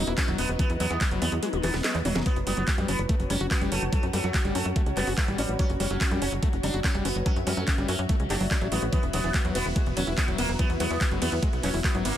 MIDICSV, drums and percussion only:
0, 0, Header, 1, 2, 480
1, 0, Start_track
1, 0, Tempo, 416667
1, 683, Time_signature, 4, 2, 24, 8
1, 14023, End_track
2, 0, Start_track
2, 0, Title_t, "Drums"
2, 83, Note_on_c, 9, 42, 41
2, 198, Note_off_c, 9, 42, 0
2, 203, Note_on_c, 9, 36, 109
2, 203, Note_on_c, 9, 39, 117
2, 203, Note_on_c, 9, 42, 94
2, 318, Note_off_c, 9, 36, 0
2, 318, Note_off_c, 9, 39, 0
2, 318, Note_off_c, 9, 42, 0
2, 323, Note_on_c, 9, 42, 41
2, 438, Note_off_c, 9, 42, 0
2, 443, Note_on_c, 9, 46, 103
2, 558, Note_off_c, 9, 46, 0
2, 563, Note_on_c, 9, 42, 39
2, 678, Note_off_c, 9, 42, 0
2, 683, Note_on_c, 9, 36, 124
2, 683, Note_on_c, 9, 42, 98
2, 798, Note_off_c, 9, 36, 0
2, 798, Note_off_c, 9, 42, 0
2, 803, Note_on_c, 9, 42, 45
2, 918, Note_off_c, 9, 42, 0
2, 923, Note_on_c, 9, 46, 106
2, 1038, Note_off_c, 9, 46, 0
2, 1043, Note_on_c, 9, 42, 43
2, 1158, Note_off_c, 9, 42, 0
2, 1162, Note_on_c, 9, 36, 117
2, 1163, Note_on_c, 9, 39, 127
2, 1163, Note_on_c, 9, 42, 101
2, 1278, Note_off_c, 9, 36, 0
2, 1278, Note_off_c, 9, 39, 0
2, 1278, Note_off_c, 9, 42, 0
2, 1283, Note_on_c, 9, 42, 45
2, 1398, Note_off_c, 9, 42, 0
2, 1403, Note_on_c, 9, 46, 102
2, 1518, Note_off_c, 9, 46, 0
2, 1523, Note_on_c, 9, 42, 43
2, 1638, Note_off_c, 9, 42, 0
2, 1642, Note_on_c, 9, 42, 94
2, 1642, Note_on_c, 9, 48, 60
2, 1758, Note_off_c, 9, 42, 0
2, 1758, Note_off_c, 9, 48, 0
2, 1763, Note_on_c, 9, 42, 43
2, 1763, Note_on_c, 9, 48, 58
2, 1878, Note_off_c, 9, 42, 0
2, 1878, Note_off_c, 9, 48, 0
2, 1883, Note_on_c, 9, 39, 37
2, 1883, Note_on_c, 9, 46, 99
2, 1883, Note_on_c, 9, 48, 73
2, 1998, Note_off_c, 9, 39, 0
2, 1998, Note_off_c, 9, 46, 0
2, 1998, Note_off_c, 9, 48, 0
2, 2003, Note_on_c, 9, 38, 70
2, 2003, Note_on_c, 9, 46, 60
2, 2118, Note_off_c, 9, 38, 0
2, 2118, Note_off_c, 9, 46, 0
2, 2123, Note_on_c, 9, 38, 86
2, 2123, Note_on_c, 9, 39, 116
2, 2123, Note_on_c, 9, 42, 97
2, 2238, Note_off_c, 9, 38, 0
2, 2238, Note_off_c, 9, 39, 0
2, 2238, Note_off_c, 9, 42, 0
2, 2243, Note_on_c, 9, 42, 43
2, 2358, Note_off_c, 9, 42, 0
2, 2363, Note_on_c, 9, 45, 102
2, 2363, Note_on_c, 9, 46, 107
2, 2478, Note_off_c, 9, 45, 0
2, 2478, Note_off_c, 9, 46, 0
2, 2483, Note_on_c, 9, 38, 89
2, 2483, Note_on_c, 9, 42, 42
2, 2598, Note_off_c, 9, 38, 0
2, 2598, Note_off_c, 9, 42, 0
2, 2602, Note_on_c, 9, 36, 122
2, 2603, Note_on_c, 9, 42, 96
2, 2718, Note_off_c, 9, 36, 0
2, 2718, Note_off_c, 9, 42, 0
2, 2723, Note_on_c, 9, 42, 43
2, 2838, Note_off_c, 9, 42, 0
2, 2842, Note_on_c, 9, 46, 107
2, 2958, Note_off_c, 9, 46, 0
2, 2963, Note_on_c, 9, 42, 42
2, 3078, Note_off_c, 9, 42, 0
2, 3083, Note_on_c, 9, 36, 120
2, 3083, Note_on_c, 9, 39, 127
2, 3083, Note_on_c, 9, 42, 99
2, 3198, Note_off_c, 9, 36, 0
2, 3198, Note_off_c, 9, 39, 0
2, 3198, Note_off_c, 9, 42, 0
2, 3203, Note_on_c, 9, 42, 44
2, 3318, Note_off_c, 9, 42, 0
2, 3322, Note_on_c, 9, 46, 106
2, 3438, Note_off_c, 9, 46, 0
2, 3442, Note_on_c, 9, 42, 45
2, 3558, Note_off_c, 9, 42, 0
2, 3562, Note_on_c, 9, 36, 127
2, 3562, Note_on_c, 9, 42, 93
2, 3678, Note_off_c, 9, 36, 0
2, 3678, Note_off_c, 9, 42, 0
2, 3682, Note_on_c, 9, 42, 41
2, 3798, Note_off_c, 9, 42, 0
2, 3802, Note_on_c, 9, 46, 105
2, 3917, Note_off_c, 9, 46, 0
2, 3923, Note_on_c, 9, 42, 42
2, 4038, Note_off_c, 9, 42, 0
2, 4042, Note_on_c, 9, 36, 117
2, 4042, Note_on_c, 9, 39, 120
2, 4042, Note_on_c, 9, 42, 97
2, 4158, Note_off_c, 9, 36, 0
2, 4158, Note_off_c, 9, 39, 0
2, 4158, Note_off_c, 9, 42, 0
2, 4163, Note_on_c, 9, 42, 43
2, 4278, Note_off_c, 9, 42, 0
2, 4283, Note_on_c, 9, 46, 108
2, 4398, Note_off_c, 9, 46, 0
2, 4403, Note_on_c, 9, 42, 42
2, 4518, Note_off_c, 9, 42, 0
2, 4522, Note_on_c, 9, 36, 127
2, 4523, Note_on_c, 9, 42, 93
2, 4638, Note_off_c, 9, 36, 0
2, 4638, Note_off_c, 9, 42, 0
2, 4643, Note_on_c, 9, 42, 44
2, 4758, Note_off_c, 9, 42, 0
2, 4762, Note_on_c, 9, 46, 115
2, 4878, Note_off_c, 9, 46, 0
2, 4883, Note_on_c, 9, 42, 41
2, 4998, Note_off_c, 9, 42, 0
2, 5002, Note_on_c, 9, 36, 124
2, 5002, Note_on_c, 9, 39, 127
2, 5002, Note_on_c, 9, 42, 98
2, 5118, Note_off_c, 9, 36, 0
2, 5118, Note_off_c, 9, 39, 0
2, 5118, Note_off_c, 9, 42, 0
2, 5122, Note_on_c, 9, 42, 41
2, 5237, Note_off_c, 9, 42, 0
2, 5243, Note_on_c, 9, 46, 108
2, 5358, Note_off_c, 9, 46, 0
2, 5363, Note_on_c, 9, 42, 43
2, 5478, Note_off_c, 9, 42, 0
2, 5482, Note_on_c, 9, 36, 127
2, 5483, Note_on_c, 9, 42, 92
2, 5598, Note_off_c, 9, 36, 0
2, 5598, Note_off_c, 9, 42, 0
2, 5603, Note_on_c, 9, 42, 42
2, 5718, Note_off_c, 9, 42, 0
2, 5723, Note_on_c, 9, 39, 37
2, 5723, Note_on_c, 9, 46, 105
2, 5838, Note_off_c, 9, 39, 0
2, 5838, Note_off_c, 9, 46, 0
2, 5843, Note_on_c, 9, 46, 64
2, 5958, Note_off_c, 9, 46, 0
2, 5962, Note_on_c, 9, 36, 122
2, 5963, Note_on_c, 9, 39, 124
2, 5963, Note_on_c, 9, 42, 94
2, 6078, Note_off_c, 9, 36, 0
2, 6078, Note_off_c, 9, 39, 0
2, 6078, Note_off_c, 9, 42, 0
2, 6083, Note_on_c, 9, 42, 41
2, 6198, Note_off_c, 9, 42, 0
2, 6202, Note_on_c, 9, 46, 115
2, 6317, Note_off_c, 9, 46, 0
2, 6323, Note_on_c, 9, 42, 41
2, 6438, Note_off_c, 9, 42, 0
2, 6442, Note_on_c, 9, 36, 127
2, 6442, Note_on_c, 9, 42, 91
2, 6557, Note_off_c, 9, 42, 0
2, 6558, Note_off_c, 9, 36, 0
2, 6562, Note_on_c, 9, 42, 40
2, 6678, Note_off_c, 9, 42, 0
2, 6682, Note_on_c, 9, 46, 117
2, 6798, Note_off_c, 9, 46, 0
2, 6803, Note_on_c, 9, 42, 41
2, 6918, Note_off_c, 9, 42, 0
2, 6922, Note_on_c, 9, 36, 122
2, 6922, Note_on_c, 9, 39, 125
2, 6922, Note_on_c, 9, 42, 94
2, 7038, Note_off_c, 9, 36, 0
2, 7038, Note_off_c, 9, 39, 0
2, 7038, Note_off_c, 9, 42, 0
2, 7043, Note_on_c, 9, 42, 40
2, 7158, Note_off_c, 9, 42, 0
2, 7163, Note_on_c, 9, 46, 111
2, 7278, Note_off_c, 9, 46, 0
2, 7283, Note_on_c, 9, 42, 42
2, 7398, Note_off_c, 9, 42, 0
2, 7403, Note_on_c, 9, 36, 127
2, 7403, Note_on_c, 9, 42, 93
2, 7518, Note_off_c, 9, 36, 0
2, 7518, Note_off_c, 9, 42, 0
2, 7522, Note_on_c, 9, 42, 41
2, 7638, Note_off_c, 9, 42, 0
2, 7642, Note_on_c, 9, 46, 106
2, 7758, Note_off_c, 9, 46, 0
2, 7763, Note_on_c, 9, 42, 40
2, 7878, Note_off_c, 9, 42, 0
2, 7882, Note_on_c, 9, 36, 122
2, 7882, Note_on_c, 9, 39, 122
2, 7882, Note_on_c, 9, 42, 88
2, 7998, Note_off_c, 9, 36, 0
2, 7998, Note_off_c, 9, 39, 0
2, 7998, Note_off_c, 9, 42, 0
2, 8003, Note_on_c, 9, 42, 39
2, 8118, Note_off_c, 9, 42, 0
2, 8123, Note_on_c, 9, 46, 121
2, 8238, Note_off_c, 9, 46, 0
2, 8243, Note_on_c, 9, 42, 39
2, 8358, Note_off_c, 9, 42, 0
2, 8362, Note_on_c, 9, 42, 89
2, 8363, Note_on_c, 9, 36, 127
2, 8478, Note_off_c, 9, 36, 0
2, 8478, Note_off_c, 9, 42, 0
2, 8483, Note_on_c, 9, 42, 39
2, 8598, Note_off_c, 9, 42, 0
2, 8603, Note_on_c, 9, 46, 109
2, 8718, Note_off_c, 9, 46, 0
2, 8723, Note_on_c, 9, 42, 39
2, 8838, Note_off_c, 9, 42, 0
2, 8843, Note_on_c, 9, 36, 124
2, 8843, Note_on_c, 9, 39, 121
2, 8843, Note_on_c, 9, 42, 90
2, 8958, Note_off_c, 9, 36, 0
2, 8958, Note_off_c, 9, 39, 0
2, 8958, Note_off_c, 9, 42, 0
2, 8963, Note_on_c, 9, 42, 38
2, 9078, Note_off_c, 9, 42, 0
2, 9083, Note_on_c, 9, 46, 109
2, 9198, Note_off_c, 9, 46, 0
2, 9203, Note_on_c, 9, 42, 41
2, 9318, Note_off_c, 9, 42, 0
2, 9323, Note_on_c, 9, 36, 127
2, 9323, Note_on_c, 9, 42, 88
2, 9438, Note_off_c, 9, 36, 0
2, 9438, Note_off_c, 9, 42, 0
2, 9443, Note_on_c, 9, 42, 41
2, 9558, Note_off_c, 9, 42, 0
2, 9563, Note_on_c, 9, 39, 36
2, 9563, Note_on_c, 9, 46, 108
2, 9678, Note_off_c, 9, 39, 0
2, 9678, Note_off_c, 9, 46, 0
2, 9683, Note_on_c, 9, 46, 65
2, 9798, Note_off_c, 9, 46, 0
2, 9802, Note_on_c, 9, 39, 118
2, 9802, Note_on_c, 9, 42, 87
2, 9803, Note_on_c, 9, 36, 119
2, 9918, Note_off_c, 9, 36, 0
2, 9918, Note_off_c, 9, 39, 0
2, 9918, Note_off_c, 9, 42, 0
2, 9923, Note_on_c, 9, 42, 38
2, 10038, Note_off_c, 9, 42, 0
2, 10043, Note_on_c, 9, 46, 117
2, 10158, Note_off_c, 9, 46, 0
2, 10163, Note_on_c, 9, 42, 39
2, 10278, Note_off_c, 9, 42, 0
2, 10283, Note_on_c, 9, 36, 127
2, 10283, Note_on_c, 9, 42, 86
2, 10398, Note_off_c, 9, 36, 0
2, 10398, Note_off_c, 9, 42, 0
2, 10403, Note_on_c, 9, 42, 40
2, 10518, Note_off_c, 9, 42, 0
2, 10523, Note_on_c, 9, 46, 112
2, 10523, Note_on_c, 9, 51, 82
2, 10638, Note_off_c, 9, 46, 0
2, 10638, Note_off_c, 9, 51, 0
2, 10643, Note_on_c, 9, 42, 40
2, 10758, Note_off_c, 9, 42, 0
2, 10762, Note_on_c, 9, 36, 115
2, 10763, Note_on_c, 9, 39, 122
2, 10763, Note_on_c, 9, 42, 93
2, 10878, Note_off_c, 9, 36, 0
2, 10878, Note_off_c, 9, 39, 0
2, 10878, Note_off_c, 9, 42, 0
2, 10883, Note_on_c, 9, 42, 40
2, 10998, Note_off_c, 9, 42, 0
2, 11003, Note_on_c, 9, 46, 101
2, 11003, Note_on_c, 9, 51, 79
2, 11118, Note_off_c, 9, 46, 0
2, 11118, Note_off_c, 9, 51, 0
2, 11242, Note_on_c, 9, 36, 126
2, 11243, Note_on_c, 9, 42, 89
2, 11358, Note_off_c, 9, 36, 0
2, 11358, Note_off_c, 9, 42, 0
2, 11363, Note_on_c, 9, 42, 39
2, 11478, Note_off_c, 9, 42, 0
2, 11483, Note_on_c, 9, 46, 107
2, 11483, Note_on_c, 9, 51, 81
2, 11598, Note_off_c, 9, 46, 0
2, 11598, Note_off_c, 9, 51, 0
2, 11603, Note_on_c, 9, 42, 38
2, 11718, Note_off_c, 9, 42, 0
2, 11722, Note_on_c, 9, 36, 117
2, 11722, Note_on_c, 9, 39, 113
2, 11722, Note_on_c, 9, 42, 88
2, 11838, Note_off_c, 9, 36, 0
2, 11838, Note_off_c, 9, 39, 0
2, 11838, Note_off_c, 9, 42, 0
2, 11842, Note_on_c, 9, 42, 38
2, 11958, Note_off_c, 9, 42, 0
2, 11962, Note_on_c, 9, 46, 110
2, 11962, Note_on_c, 9, 51, 82
2, 12078, Note_off_c, 9, 46, 0
2, 12078, Note_off_c, 9, 51, 0
2, 12083, Note_on_c, 9, 42, 38
2, 12198, Note_off_c, 9, 42, 0
2, 12202, Note_on_c, 9, 36, 127
2, 12203, Note_on_c, 9, 42, 95
2, 12318, Note_off_c, 9, 36, 0
2, 12318, Note_off_c, 9, 42, 0
2, 12323, Note_on_c, 9, 42, 43
2, 12438, Note_off_c, 9, 42, 0
2, 12443, Note_on_c, 9, 46, 107
2, 12443, Note_on_c, 9, 51, 85
2, 12558, Note_off_c, 9, 46, 0
2, 12558, Note_off_c, 9, 51, 0
2, 12563, Note_on_c, 9, 42, 39
2, 12678, Note_off_c, 9, 42, 0
2, 12682, Note_on_c, 9, 36, 114
2, 12683, Note_on_c, 9, 39, 121
2, 12683, Note_on_c, 9, 42, 94
2, 12798, Note_off_c, 9, 36, 0
2, 12798, Note_off_c, 9, 39, 0
2, 12798, Note_off_c, 9, 42, 0
2, 12803, Note_on_c, 9, 42, 41
2, 12918, Note_off_c, 9, 42, 0
2, 12923, Note_on_c, 9, 46, 102
2, 12923, Note_on_c, 9, 51, 80
2, 13038, Note_off_c, 9, 46, 0
2, 13038, Note_off_c, 9, 51, 0
2, 13043, Note_on_c, 9, 42, 43
2, 13158, Note_off_c, 9, 42, 0
2, 13162, Note_on_c, 9, 36, 121
2, 13162, Note_on_c, 9, 42, 95
2, 13278, Note_off_c, 9, 36, 0
2, 13278, Note_off_c, 9, 42, 0
2, 13282, Note_on_c, 9, 42, 41
2, 13398, Note_off_c, 9, 42, 0
2, 13402, Note_on_c, 9, 39, 34
2, 13402, Note_on_c, 9, 46, 104
2, 13402, Note_on_c, 9, 51, 80
2, 13518, Note_off_c, 9, 39, 0
2, 13518, Note_off_c, 9, 46, 0
2, 13518, Note_off_c, 9, 51, 0
2, 13523, Note_on_c, 9, 46, 61
2, 13638, Note_off_c, 9, 46, 0
2, 13642, Note_on_c, 9, 39, 116
2, 13642, Note_on_c, 9, 42, 93
2, 13643, Note_on_c, 9, 36, 115
2, 13758, Note_off_c, 9, 36, 0
2, 13758, Note_off_c, 9, 39, 0
2, 13758, Note_off_c, 9, 42, 0
2, 13763, Note_on_c, 9, 42, 40
2, 13878, Note_off_c, 9, 42, 0
2, 13883, Note_on_c, 9, 46, 108
2, 13883, Note_on_c, 9, 51, 85
2, 13998, Note_off_c, 9, 46, 0
2, 13998, Note_off_c, 9, 51, 0
2, 14023, End_track
0, 0, End_of_file